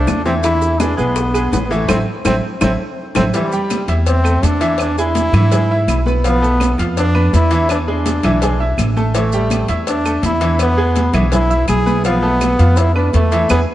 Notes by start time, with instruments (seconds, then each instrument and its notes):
Already playing: grand piano A3 A4 C5, trombone D4
0.07 upright bass E2, high bongo, low bongo, high conga, claves, maracas
0.25 grand piano E3 E4 E5, trombone C4, high bongo, high conga, maracas
0.43 grand piano E3 E4 E5, trombone E4, high bongo, high conga, maracas
0.62 high bongo, high conga, maracas
0.80 grand piano G#3 G#4 B4, trombone D4, high bongo, high conga, claves, maracas
0.97 upright bass B1, grand piano G#3 G#4 B4, trombone B3, high conga, maracas
1.16 high bongo, high conga, maracas
1.34 grand piano G#3 G#4 B4, high bongo, high conga, claves, maracas
1.52 upright bass A1, trombone B3, high bongo, low bongo, high conga, maracas
1.65 trombone B3
1.70 grand piano E3 E4 E5, trombone A3, high bongo, high conga, maracas
1.88 upright bass A1, trombone C4, grand piano E4 A4 C5, low bongo, low conga, claves, maracas
2.25 upright bass A1, trombone C4, grand piano E4 A4 C5, low bongo, low conga, claves, maracas
2.61 upright bass A1, trombone C4, grand piano E4 A4 C5, low bongo, low conga, claves, maracas
3.15 upright bass A1, trombone C4, grand piano E4 A4 C5, low bongo, low conga, claves, maracas
3.34 grand piano E3 E4 E5, trombone G3, cowbell, high conga, maracas
3.52 grand piano G3 G4 G5, high conga, maracas
3.70 cowbell, high conga, claves, maracas
3.88 upright bass E2, grand piano E4 E5 E6, cowbell, high conga, maracas
4.06 trombone C4, cowbell, high conga, maracas
4.24 grand piano A3 A4 A5, high conga, claves, maracas
4.42 upright bass E2, trombone D4, cowbell, high conga, maracas
4.61 grand piano E3 E4 E5, cowbell, high conga, maracas
4.78 trombone D4, cowbell, high conga, claves, maracas
4.97 grand piano G#3 G#4 G#5, trombone E4, high conga, maracas
5.15 cowbell, high conga, maracas
5.32 upright bass G#2, grand piano E3 E4 E5, cowbell, high conga, low conga, claves, maracas
5.52 grand piano G#3 G#4 G#5, cowbell, high conga, low conga, maracas
5.71 grand piano E4 E5 E6, high conga
5.87 upright bass B1, cowbell, high conga, claves, maracas
6.06 grand piano B3 B4 B5, high conga, maracas
6.24 grand piano F3 F4 F5, trombone B3, cowbell, high conga, maracas
6.42 grand piano A3 A4 A5, high conga, maracas
6.60 cowbell, high conga, claves, maracas
6.78 upright bass F2, grand piano F4 F5 F6, cowbell, high conga, maracas
6.97 trombone D4, cowbell, high conga, maracas
7.15 grand piano B3 B4 B5, high conga, claves
7.33 upright bass E2, trombone E4, cowbell, high conga, maracas
7.51 grand piano E3 E4 E5, cowbell, high conga, maracas
7.69 trombone D4, cowbell, high conga, claves, maracas
7.88 grand piano G#3 G#4 G#5, trombone D4, high conga
8.06 cowbell, high conga, maracas
8.23 upright bass B1, grand piano E3 E4 E5, cowbell, high conga, low conga, claves, maracas
8.42 grand piano G#3 G#4 G#5, cowbell, high conga, low conga, maracas
8.60 grand piano E4 E5 E6, high conga
8.77 upright bass A1, cowbell, high conga, claves, maracas
8.96 grand piano A3 A4 A5, high conga, maracas
9.14 grand piano E3 E4 E5, trombone A3, cowbell, high conga, maracas
9.32 grand piano G3 G4 G5, maracas
9.50 cowbell, high conga, claves, maracas
9.68 upright bass E2, grand piano E4 E5 E6, cowbell, high conga, maracas
9.87 trombone D4, cowbell, high conga, maracas
10.05 grand piano A3 A4 A5, high conga, claves, maracas
10.22 upright bass E2, trombone E4, cowbell, high conga, maracas
10.41 grand piano E3 E4 E5, cowbell, high conga, maracas
10.59 trombone B3, cowbell, high conga, claves, maracas
10.77 grand piano G#3 G#4 G#5, high conga
10.96 cowbell, high conga, maracas
11.13 upright bass B1, grand piano E3 E4 E5, cowbell, high conga, low conga, claves, maracas
11.32 grand piano G#3 G#4 G#5, trombone E4, cowbell, high conga, low conga, maracas
11.50 grand piano E4 E5 E6, high conga, maracas
11.68 upright bass B1, trombone G#4, cowbell, high conga, claves, maracas
11.86 grand piano B3 B4 B5, high conga, maracas
12.04 grand piano F3 F4 F5, trombone B3, cowbell, high conga, maracas
12.22 grand piano A3 A4 A5, high conga
12.41 cowbell, high conga, claves, maracas
12.59 upright bass F2, grand piano F4 F5 F6, cowbell, high conga, maracas
12.77 trombone E4, cowbell, high conga, maracas
12.95 grand piano B3 B4 B5, trombone D4, high conga, claves
13.13 upright bass E2, trombone A3, cowbell, high conga, maracas
13.32 grand piano E3 E4 E5, cowbell, high conga, maracas
13.49 upright bass E2, trombone B3, grand piano E4 G#4 B4, cowbell, high conga, claves, maracas